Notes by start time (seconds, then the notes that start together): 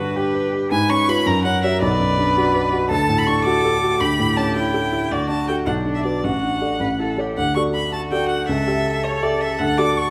Already playing: G2 D3 B4
0.00 D4 F#4
0.16 G4
0.34 B4
0.53 G4
0.71 G#2 B4 G#5
0.89 C#4 C#6
1.08 F4 B4 B5
1.25 F#2 A#4 A#5
1.44 C#4 F#5
1.64 F#4 C#5 E5
1.80 B1 B4 D5
2.00 F#2
2.18 D4
2.37 F#4
2.55 B4
2.73 F#4
2.90 D2 A4 A5
3.09 A2
3.18 B5
3.27 D4 C#6
3.45 F#4 D6
3.64 A4
3.83 F#4
4.00 D2 G4 B5
4.19 A2
4.36 C#4 A5
4.55 E4 G5
4.74 A4
4.92 E4
5.11 D2 F#4 D5
5.29 D4 A5
5.48 F#4 A4 G5
5.66 B1 D4 F#5
5.86 D4
5.94 E5
6.04 F#4 B4 D5
6.24 A1 F#4 F#5
6.43 D4
6.61 A4 D5
6.80 A1 B4
7.00 E4 A4
7.18 G4 A4 C#5
7.37 D2 F#5
7.55 F#4 A4 D5 C#6
7.75 B5
7.93 F#4 A5
8.11 F#4 A4 D5 G5
8.29 F#5
8.48 C#2 A4 E5
8.67 G4 A4 E5
9.04 C#5
9.22 G4 A4 D5 E5
9.41 E5
9.59 D2 F#5
9.78 F#4 A4 D5 D6
9.97 C#6